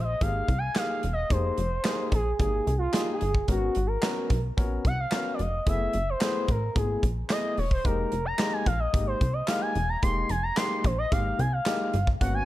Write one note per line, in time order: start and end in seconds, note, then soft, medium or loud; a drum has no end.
0.00 0.16 A#1 medium
0.00 0.23 D#5 loud
0.21 0.43 G#1 medium
0.21 0.49 A#3 medium
0.21 0.49 D#4 medium
0.21 0.50 G4 medium
0.21 0.50 G#4 medium
0.21 0.60 F5 loud
0.21 kick loud
0.21 closed hi-hat medium
0.48 0.70 C2 medium
0.48 kick medium
0.48 closed hi-hat medium
0.58 0.78 G#5 loud
0.75 1.04 A#3 medium
0.75 1.04 D#4 medium
0.75 1.04 G4 medium
0.75 1.04 G#4 medium
0.75 1.12 F5 loud
0.75 snare medium
0.75 clap medium
0.75 closed hi-hat medium
1.03 1.25 E1 medium
1.03 closed hi-hat medium
1.13 1.33 D#5 medium
1.30 1.52 F1 medium
1.30 1.58 A#3 medium
1.30 1.58 D#4 medium
1.30 1.59 G4 medium
1.30 1.59 G#4 medium
1.30 2.13 C5 medium
1.30 kick loud
1.30 closed hi-hat medium
1.58 1.79 F1 medium
1.58 closed hi-hat medium
1.84 2.13 A#3 medium
1.84 2.13 D#4 medium
1.84 2.13 G4 medium
1.84 2.13 G#4 loud
1.84 snare loud
1.84 clap loud
1.84 closed hi-hat medium
2.12 2.34 A#1 medium
2.12 2.38 G#4 medium
2.12 kick medium
2.12 closed hi-hat medium
2.39 2.61 G#1 medium
2.39 2.67 A#3 medium
2.39 2.68 D#4 medium
2.39 2.68 G4 medium
2.39 2.68 G#4 medium
2.39 2.74 G#4 medium
2.39 kick loud
2.39 closed hi-hat medium
2.67 2.88 C2 medium
2.67 closed hi-hat medium
2.78 3.11 F4 loud
2.93 3.22 A#3 medium
2.93 3.22 D#4 medium
2.93 3.22 G4 medium
2.93 3.22 G#4 loud
2.93 snare loud
2.93 clap medium
2.93 closed hi-hat loud
3.14 3.47 G#4 medium
3.21 3.43 G1 medium
3.21 closed hi-hat medium
3.35 kick medium
3.48 3.70 G#1 loud
3.48 3.76 B3 medium
3.48 3.77 C#4 medium
3.48 3.77 F#4 medium
3.48 3.88 F#4 medium
3.48 3.77 A#4 medium
3.48 kick loud
3.48 closed hi-hat medium
3.75 3.98 G#1 loud
3.75 closed hi-hat medium
3.87 4.41 A#4 medium
4.02 4.31 B3 medium
4.02 4.31 C#4 medium
4.02 4.31 F#4 medium
4.02 4.31 A#4 medium
4.02 snare loud
4.02 clap loud
4.02 closed hi-hat loud
4.30 4.52 B1 medium
4.30 kick medium
4.30 closed hi-hat medium
4.57 4.79 A#1 medium
4.57 4.86 B3 medium
4.57 4.86 C#4 medium
4.57 4.86 F#4 medium
4.57 4.86 A#4 medium
4.57 kick loud
4.57 closed hi-hat medium
4.85 5.07 C2 medium
4.85 5.01 F#5 loud
4.85 kick loud
4.85 closed hi-hat medium
5.00 5.35 F5 loud
5.12 5.40 B3 medium
5.12 5.40 C#4 medium
5.12 5.41 F#4 medium
5.12 5.40 A#4 medium
5.12 snare medium
5.12 clap medium
5.12 closed hi-hat medium
5.34 5.42 D5 medium
5.39 5.61 F1 medium
5.39 5.67 D#5 medium
5.39 closed hi-hat medium
5.66 5.88 F#1 loud
5.66 5.95 A3 medium
5.66 5.95 B3 medium
5.66 5.95 E4 medium
5.66 5.95 G#4 medium
5.66 6.11 E5 medium
5.66 kick loud
5.66 closed hi-hat medium
5.93 6.16 F#1 medium
5.93 closed hi-hat medium
6.10 6.52 C5 loud
6.21 6.49 A3 medium
6.21 6.49 B3 medium
6.21 6.49 E4 medium
6.21 6.50 G#4 medium
6.21 snare loud
6.21 clap loud
6.21 closed hi-hat loud
6.48 6.70 A1 loud
6.48 6.79 A#4 medium
6.48 kick medium
6.48 closed hi-hat medium
6.75 6.98 G#1 medium
6.75 7.04 A3 medium
6.75 7.04 B3 medium
6.75 7.04 E4 medium
6.75 7.04 G#4 medium
6.75 kick loud
6.75 closed hi-hat medium
7.03 7.25 A#1 medium
7.03 kick medium
7.03 closed hi-hat medium
7.30 7.58 A3 medium
7.30 7.58 B3 medium
7.30 7.59 E4 medium
7.30 7.59 G#4 medium
7.30 7.60 D#5 loud
7.30 snare loud
7.30 clap medium
7.30 closed hi-hat loud
7.58 7.79 E1 loud
7.58 7.72 C#5 medium
7.58 open hi-hat medium
7.71 7.87 C5 medium
7.71 kick medium
7.84 8.07 F1 loud
7.84 8.13 G#3 medium
7.84 8.13 A#3 medium
7.84 8.13 D#4 medium
7.84 8.13 G4 medium
7.84 8.27 A#4 medium
7.84 kick medium
7.84 closed hi-hat medium
8.12 8.34 F1 medium
8.12 closed hi-hat medium
8.25 8.55 A#5 loud
8.38 8.67 G#3 medium
8.38 8.67 A#3 medium
8.38 8.67 D#4 medium
8.38 8.68 G4 medium
8.38 snare loud
8.38 clap medium
8.38 closed hi-hat loud
8.53 8.68 G#5 medium
8.66 8.88 A#1 medium
8.66 8.81 F5 loud
8.66 kick medium
8.66 closed hi-hat medium
8.80 9.06 D#5 medium
8.93 9.16 G#1 medium
8.93 9.22 G#3 medium
8.93 9.22 A#3 medium
8.93 9.22 D#4 medium
8.93 9.22 G4 medium
8.93 kick loud
8.93 closed hi-hat medium
9.07 9.35 C5 medium
9.21 9.43 C2 medium
9.21 kick medium
9.21 closed hi-hat medium
9.33 9.48 D#5 medium
9.47 9.77 G#3 medium
9.47 9.77 A#3 medium
9.47 9.77 D#4 medium
9.47 9.77 G4 medium
9.47 9.63 F5 medium
9.47 snare medium
9.47 clap medium
9.47 closed hi-hat medium
9.61 9.91 G#5 loud
9.75 9.97 E1 medium
9.75 closed hi-hat medium
9.89 10.02 A#5 loud
10.02 10.25 F1 loud
10.02 10.31 G#3 medium
10.02 10.31 A#3 medium
10.02 10.31 D#4 medium
10.02 10.31 G4 medium
10.02 10.31 C6 medium
10.02 kick loud
10.02 closed hi-hat medium
10.29 10.52 F1 medium
10.29 10.45 G#5 loud
10.29 closed hi-hat medium
10.43 10.58 A#5 loud
10.56 10.85 G#3 medium
10.56 10.85 A#3 medium
10.56 10.86 D#4 medium
10.56 10.86 G4 loud
10.56 10.86 C6 loud
10.56 snare loud
10.56 clap medium
10.56 closed hi-hat loud
10.84 11.06 A#1 medium
10.84 10.98 C5 medium
10.84 kick medium
10.84 closed hi-hat medium
10.98 11.11 D#5 medium
11.12 11.34 G#1 medium
11.12 11.40 G#3 medium
11.12 11.40 A#3 medium
11.12 11.40 D#4 medium
11.12 11.41 G4 medium
11.12 11.41 F5 medium
11.12 kick loud
11.12 closed hi-hat medium
11.39 11.61 C2 loud
11.39 11.54 G#5 medium
11.39 closed hi-hat medium
11.53 12.07 F5 medium
11.66 11.95 G#3 medium
11.66 11.95 A#3 medium
11.66 11.95 D#4 medium
11.66 11.95 G4 medium
11.66 snare loud
11.66 clap medium
11.66 closed hi-hat loud
11.94 12.16 G1 medium
11.94 closed hi-hat medium
12.07 kick medium
12.20 12.43 G#1 loud
12.20 12.45 A#3 medium
12.20 12.45 B3 medium
12.20 12.45 C#4 medium
12.20 12.45 F#4 medium
12.20 12.34 F#5 medium
12.20 kick medium
12.20 closed hi-hat loud
12.34 12.45 G#5 loud